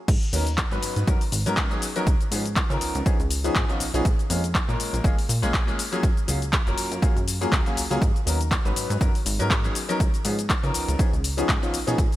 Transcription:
0.08 G#2, kick, closed hi-hat, crash, shaker
0.22 closed hi-hat, shaker
0.33 D#2 F#3 B3 C#4 D#4 A#4, open hi-hat, shaker
0.47 closed hi-hat, shaker
0.58 kick, clap, closed hi-hat, shaker
0.71 G#1 F#3 B3 C#4 D#4 B4, closed hi-hat, shaker
0.83 G#2, open hi-hat, shaker
0.96 G#2, closed hi-hat, shaker
1.07 F#2 F#3 B3 C#4 D#4 A#4, kick, closed hi-hat, shaker
1.21 open hi-hat, shaker
1.32 G#1, open hi-hat, shaker
1.46 G#2 F#3 B3 C#4 D#4 A#4, closed hi-hat, shaker
1.57 kick, clap, closed hi-hat, shaker
1.71 F#3 B3 C#4 D#4 G#4, closed hi-hat, shaker
1.82 open hi-hat, shaker
1.96 F#3 B3 C#4 D#4 A#4, closed hi-hat, shaker
2.07 C#2, kick, closed hi-hat, shaker
2.21 closed hi-hat, shaker
2.31 G#2 F3 B3 C#4 D#4 G#4, open hi-hat, shaker
2.46 closed hi-hat, shaker
2.56 kick, clap, closed hi-hat, shaker
2.70 C#3 F3 B3 C#4 D#4 A#4, closed hi-hat, shaker
2.81 C#2, open hi-hat, shaker
2.95 C#2, closed hi-hat, shaker
3.06 F3 B3 C#4 D#4 G#4, kick, closed hi-hat, shaker
3.20 C#2, closed hi-hat, shaker
3.31 open hi-hat, shaker
3.44 F3 B3 C#4 D#4 G#4, closed hi-hat, shaker
3.56 G#2, kick, clap, closed hi-hat, shaker
3.69 F3 B3 C#4 D#4 F4, closed hi-hat, shaker
3.80 B1, open hi-hat, shaker
3.94 B1 F3 B3 C#4 D#4 G#4, closed hi-hat, shaker
4.05 A#1, kick, closed hi-hat, shaker
4.19 closed hi-hat, shaker
4.30 F2 G#3 A#3 C#4 F4 G#4, open hi-hat, shaker
4.44 closed hi-hat, shaker
4.55 kick, clap, closed hi-hat, shaker
4.68 A#2 G#3 A#3 C#4 F4 A#4, closed hi-hat, shaker
4.80 open hi-hat, shaker
4.93 A#1, closed hi-hat, shaker
5.04 G#1 G#3 A#3 C#4 F4 G#4, kick, closed hi-hat, shaker
5.18 open hi-hat, shaker
5.29 A#2, open hi-hat, shaker
5.42 A#1 G#3 A#3 C#4 F4 G#4, closed hi-hat, shaker
5.54 kick, clap, closed hi-hat, shaker
5.67 G#3 A#3 C#4 F4 G#4, closed hi-hat, shaker
5.79 open hi-hat, shaker
5.92 F#3 A#3 C#4 F4 G#4, closed hi-hat, shaker
6.03 F#2, kick, closed hi-hat, shaker
6.17 closed hi-hat, shaker
6.27 C#2 F#3 A#3 C#4 F4 G#4, open hi-hat, shaker
6.42 closed hi-hat, shaker
6.53 kick, clap, closed hi-hat, shaker
6.66 F#1 F#3 A#3 C#4 F4 A#4, closed hi-hat, shaker
6.78 F#2, open hi-hat, shaker
6.91 F#2, closed hi-hat, shaker
7.02 F#3 A#3 C#4 F4 G#4, kick, closed hi-hat, shaker
7.16 F#2, closed hi-hat, shaker
7.28 open hi-hat, shaker
7.41 F#3 A#3 C#4 F4 G#4, closed hi-hat, shaker
7.52 C#2, kick, clap, closed hi-hat, shaker
7.66 F#3 A#3 C#4 F4 G#4, closed hi-hat, shaker
7.77 C#2, open hi-hat, shaker
7.90 C#2 F#3 A#3 C#4 F4 G#4, closed hi-hat, shaker
8.02 G#2, kick, closed hi-hat, shaker
8.16 closed hi-hat, shaker
8.26 D#2 F#3 B3 C#4 D#4 A#4, open hi-hat, shaker
8.41 closed hi-hat, shaker
8.51 kick, clap, closed hi-hat, shaker
8.65 G#1 F#3 B3 C#4 D#4 B4, closed hi-hat, shaker
8.76 G#2, open hi-hat, shaker
8.90 G#2, closed hi-hat, shaker
9.01 F#2 F#3 B3 C#4 D#4 A#4, kick, closed hi-hat, shaker
9.15 open hi-hat, shaker
9.26 G#1, open hi-hat, shaker
9.39 G#2 F#3 B3 C#4 D#4 A#4, closed hi-hat, shaker
9.50 kick, clap, closed hi-hat, shaker
9.64 F#3 B3 C#4 D#4 G#4, closed hi-hat, shaker
9.75 open hi-hat, shaker
9.89 F#3 B3 C#4 D#4 A#4, closed hi-hat, shaker
10.00 C#2, kick, closed hi-hat, shaker
10.14 closed hi-hat, shaker
10.24 G#2 F3 B3 C#4 D#4 G#4, open hi-hat, shaker
10.39 closed hi-hat, shaker
10.50 kick, clap, closed hi-hat, shaker
10.63 C#3 F3 B3 C#4 D#4 A#4, closed hi-hat, shaker
10.74 C#2, open hi-hat, shaker
10.88 C#2, closed hi-hat, shaker
10.99 F3 B3 C#4 D#4 G#4, kick, closed hi-hat, shaker
11.13 C#2, closed hi-hat, shaker
11.24 open hi-hat, shaker
11.37 F3 B3 C#4 D#4 G#4, closed hi-hat, shaker
11.49 G#2, kick, clap, closed hi-hat, shaker
11.62 F3 B3 C#4 D#4 F4, closed hi-hat, shaker
11.74 B1, open hi-hat, shaker
11.87 B1 F3 B3 C#4 D#4 G#4, closed hi-hat, shaker
11.98 A#1, kick, closed hi-hat, shaker
12.12 closed hi-hat, shaker

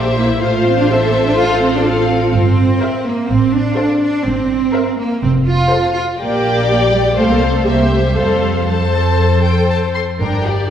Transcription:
Already playing: A#1 A#3 G4 C5 E5
0.18 A#3 E4
0.41 A1 A3 F4 C5 F5
0.66 C4
0.78 D4
0.89 C4 A4 E5
1.03 A#3
1.13 C4
1.27 D4
1.37 F4 A4 F5
1.61 C4
1.74 D4
1.85 C4 F4 A4 F5
2.33 G1 C4
2.81 A#4 C5 E5
3.06 A#3
3.30 A1 C4
3.54 D4
3.77 A4 C5 F5
4.01 D4
4.25 G1 C4
4.74 A#4 E5
4.98 A#3
5.22 F1 C4
5.47 F4
5.71 A4 C5 F5
5.95 F4
6.19 A#1 A#3 G4 D5 G5
6.93 G3
7.16 C2 A3 A4 C5 F5
7.29 A#3
7.41 C4
7.54 A3
7.65 C2 A#3 G4 C5 E5
7.91 A3
8.05 G3
8.15 F2 G3 A4 C5 F5
8.67 F3 A4 C5 A5
9.45 G5
9.70 A5
9.95 C6
10.20 G1 G2 D4 A#4 G5
10.45 G4 D5

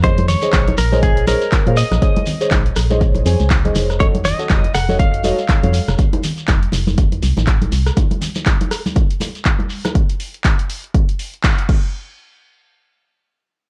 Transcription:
Already playing: F2
0.03 G#4 C5 C#5 D#5, kick, closed hi-hat, muted conga, shekere
0.18 closed hi-hat, high conga
0.28 C#5, open hi-hat, low conga, shekere
0.42 G#4 C5 C#5 D#5, closed hi-hat, muted conga, shekere
0.53 A#1, kick, clap, closed hi-hat, high conga, shekere
0.68 closed hi-hat, muted conga
0.78 A#1 A#4, open hi-hat, shekere
0.92 G#4 C5 C#5 D#5, high conga, shekere
1.02 G#4, kick, closed hi-hat, muted conga, shekere
1.17 closed hi-hat
1.27 G#4 A#4 C5 C#5 D#5, open hi-hat, muted conga, high conga, shekere
1.41 closed hi-hat, shekere
1.52 kick, clap, closed hi-hat, shekere
1.66 A#2 G#4 C5 C#5 F5, closed hi-hat, muted conga, high conga
1.77 D#5, open hi-hat, shekere
1.91 A#1, cross-stick, closed hi-hat, muted conga, shekere
2.02 G#4 C5 C#5 D#5, kick, closed hi-hat, shekere
2.16 closed hi-hat, high conga
2.26 open hi-hat, muted conga, low conga, shekere
2.41 G#4 C5 C#5 D#5, closed hi-hat, shekere
2.51 A#1, kick, clap, closed hi-hat, muted conga, high conga, shekere
2.66 closed hi-hat
2.76 A#1, cross-stick, open hi-hat, shekere
2.90 G#4 C5 C#5 D#5, closed hi-hat, muted conga, high conga, shekere
3.01 kick, closed hi-hat, shekere
3.15 closed hi-hat, muted conga
3.25 F2 G#4 C5 C#5 G#5, open hi-hat, high conga, shekere
3.40 C#2, closed hi-hat, shekere
3.50 kick, clap, closed hi-hat, muted conga, shekere
3.65 G#4 C5 C#5 D#5, closed hi-hat, high conga
3.75 F1, open hi-hat, muted conga, shekere
3.90 cross-stick, shekere
4.00 F#4 A4 C#5 D#5, kick, closed hi-hat, muted conga, shekere
4.15 closed hi-hat, high conga
4.25 D#5, open hi-hat, muted conga, low conga, shekere
4.39 F#4 A4 C#5 D#5, closed hi-hat, shekere
4.49 F1, kick, clap, closed hi-hat, high conga, shekere
4.64 closed hi-hat, muted conga
4.74 F1 F#5, cross-stick, open hi-hat, shekere
4.89 F#4 A4 C#5 D#5, muted conga, high conga, shekere
4.99 F5, kick, closed hi-hat, shekere
5.14 closed hi-hat
5.24 F#4 A4 C#5 D#5, open hi-hat, muted conga, high conga, shekere
5.39 closed hi-hat, shekere
5.49 kick, clap, closed hi-hat, muted conga, shekere
5.63 F2 F#4 A4 C#5 F5, closed hi-hat, high conga
5.74 open hi-hat, shekere
5.88 F1, cross-stick, closed hi-hat, muted conga, shekere
5.98 kick, closed hi-hat, shekere
6.13 closed hi-hat, muted conga, high conga
6.23 open hi-hat, low conga, shekere
6.37 closed hi-hat, shekere
6.48 F1, kick, clap, closed hi-hat, muted conga, high conga, shekere
6.63 closed hi-hat
6.72 F1, open hi-hat, muted conga, shekere
6.87 high conga, shekere
6.98 kick, closed hi-hat, shekere
7.12 closed hi-hat, muted conga
7.22 C2, open hi-hat, high conga, shekere
7.37 A1, closed hi-hat, muted conga, shekere
7.47 kick, clap, closed hi-hat, shekere
7.62 closed hi-hat, high conga
7.72 C2, open hi-hat, muted conga, shekere
7.86 cross-stick, closed hi-hat, shekere
7.97 kick, closed hi-hat, muted conga, shekere
8.11 closed hi-hat, high conga
8.21 open hi-hat, low conga, shekere
8.35 closed hi-hat, muted conga, shekere
8.46 kick, clap, closed hi-hat, high conga, shekere
8.61 closed hi-hat, muted conga
8.71 cross-stick, open hi-hat, shekere
8.86 high conga, shekere
8.96 kick, closed hi-hat, muted conga, shekere
9.11 closed hi-hat
9.20 open hi-hat, muted conga, high conga, shekere
9.35 closed hi-hat, shekere
9.45 kick, clap, closed hi-hat, shekere
9.59 closed hi-hat, muted conga, high conga
9.70 open hi-hat, shekere
9.85 cross-stick, muted conga, shekere
9.95 kick, closed hi-hat
10.10 closed hi-hat
10.20 open hi-hat
10.34 closed hi-hat
10.44 kick, clap, closed hi-hat
10.59 closed hi-hat
10.70 open hi-hat
10.84 closed hi-hat
10.94 kick, closed hi-hat
11.09 closed hi-hat
11.19 open hi-hat
11.34 closed hi-hat
11.44 kick, clap, closed hi-hat
11.58 closed hi-hat
11.69 kick, crash

